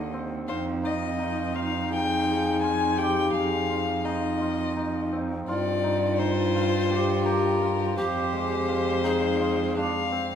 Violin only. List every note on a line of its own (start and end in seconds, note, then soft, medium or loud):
0.00 0.14 D#5 medium
0.48 0.65 C5 medium
0.85 1.57 D#5 medium
1.56 1.91 F5 medium
1.92 2.59 G5 loud
2.62 2.99 G#5 medium
2.98 3.32 G5 medium
3.33 4.06 F5 medium
4.04 5.12 D#5 medium
5.49 6.21 D5 medium
6.19 7.27 C5 loud
7.26 7.98 A#4 medium
7.97 9.76 C5 medium
9.78 10.35 F5 medium